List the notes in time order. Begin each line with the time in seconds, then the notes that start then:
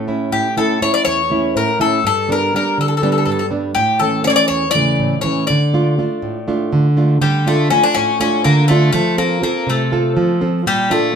Already playing: A2
0.07 A3 C#4 E4
0.32 A2 G4
0.57 A3 C#4 E4 A4
0.81 A3 C#4 E4 C#5
0.94 D5
1.05 E2 C#5
1.30 A3 C#4 E4
1.56 A2 A#4
1.79 A3 C#4 E4 A4
2.04 G2 A4
2.28 G3 B3 D4 A#4
2.54 G3 B3 D4 A#4
2.78 D3 A4
2.88 A4
2.97 A4
3.02 G3 B3 D4 A4
3.12 A4
3.18 A4
3.25 G2 A4
3.32 A4
3.39 A4
3.50 G3 B3 D4
3.75 A2 G4
4.00 E3 A3 C#4 A4
4.24 E3 A3 C#4 C#5 D5
4.30 C#5
4.36 D5
4.48 E2 C#5
4.71 D5
4.75 C#3 E3 A3
4.99 A2
5.21 E3 A3 C#5
5.25 C#4
5.47 D3 D5
5.73 A3 D4 F4
5.98 A3 D4 F4
6.22 A2
6.48 A3 D4 F4
6.73 D3
6.97 A3 D4 F4
7.21 D3 G3
7.46 A3 D4 F4
7.70 A3 C#4 D4 F4
7.83 D4
7.94 A2 C#4
8.20 A3 C#4 D4 F4
8.44 D3 A#3
8.68 A3 D4 F4
8.93 F3 A3
9.18 A#3 C4 F4 A4
9.42 A#3 C4 F4 A4
9.67 C3 A3
9.91 C4 F4 A4
10.17 F3
10.41 C4 F4 A4
10.66 A#2 G3
10.90 A3 A#3 D4 F4